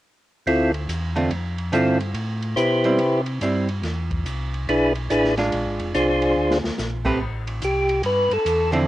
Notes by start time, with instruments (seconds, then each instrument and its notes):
0.46 tonewheel organ D2 C4 E4 F4 A4, ride
0.74 ride
0.88 tonewheel organ E2, hi-hat pedal, ride
1.16 hollow-body jazz guitar D3 A3 C4 F4, ride
1.30 tonewheel organ F2, ride
1.58 ride
1.72 tonewheel organ G2 C4 E4 F4 A4, hollow-body jazz guitar D3 A3 C4 F4, hi-hat pedal, ride
2.00 ride
2.14 tonewheel organ A2, ride
2.42 ride
2.56 tonewheel organ B2 E4 G4 B4 C5, hi-hat pedal, ride
2.84 hollow-body jazz guitar G3 C4 E4, ride
2.98 tonewheel organ C3, ride
3.26 ride
3.41 tonewheel organ G2, hollow-body jazz guitar G3 C4 E4, hi-hat pedal, ride
3.69 ride
3.83 tonewheel organ E2, snare, ride
4.11 kick, ride
4.25 tonewheel organ C2, hi-hat pedal, ride
4.54 ride
4.68 tonewheel organ B1 D4 E4 G#4 B4, ride
4.95 ride
5.10 tonewheel organ A1 D4 E4 G#4 B4, hi-hat pedal, ride
5.24 snare
5.37 hollow-body jazz guitar G#3 D4 F4, snare, ride
5.52 tonewheel organ A#1, ride
5.66 tonewheel organ G#1
5.80 tonewheel organ F1, ride
5.94 tonewheel organ C2 D4 F4 G#4 C5, hi-hat pedal, ride
6.22 ride
6.36 tonewheel organ D2
6.51 snare
6.64 tonewheel organ D2, snare
6.78 tonewheel organ A#1, snare, hi-hat pedal
7.05 hollow-body jazz guitar A3 C4 G4 B4, kick, crash
7.20 tonewheel organ A1
7.47 ride
7.62 tonewheel organ C2 G4, hi-hat pedal, ride
7.89 ride
8.03 tonewheel organ G2 B4, ride
8.31 tonewheel organ G2 A4, ride
8.45 tonewheel organ E2, hi-hat pedal, ride
8.72 hollow-body jazz guitar D3 F3 C4 E4, ride